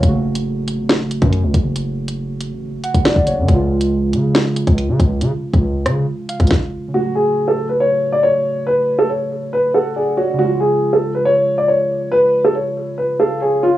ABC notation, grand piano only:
X:1
M:4/4
L:1/16
Q:1/4=139
K:F#m
V:1 name="Grand piano"
z16 | z16 | z16 | z16 |
F2 G3 A2 B c3 d c4 | B3 A c4 B2 A2 G2 F2 | F2 G3 A2 B c3 d c4 | B3 A c4 B2 A2 G2 ^E2 |]